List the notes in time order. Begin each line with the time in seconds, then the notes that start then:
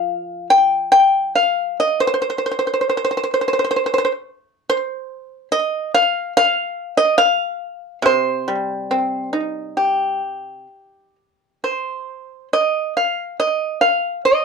Already playing: F3 F5
0.50 G5
0.92 G5
1.35 F5
1.80 D#5
2.00 C5
2.07 C5
2.14 C5
2.22 C5
2.30 C5
2.38 C5
2.46 C5
2.51 C5
2.59 C5
2.67 C5
2.74 C5
2.81 C5
2.89 C5
2.97 C5
3.05 C5
3.11 C5
3.17 C5
3.23 C5
3.34 C5
3.41 C5
3.48 C5
3.53 C5
3.59 C5
3.64 C5
3.71 C5
3.76 C5
3.86 C5
3.94 C5
3.98 C5
4.05 C5
4.70 C5
5.52 D#5
5.94 F5
6.37 F5
6.97 D#5
7.18 F5
8.02 C3 C5
8.48 G3
8.91 C4
9.33 D#4
9.77 G4
11.64 C5
12.53 D#5
12.97 F5
13.40 D#5
13.81 F5
14.25 D#5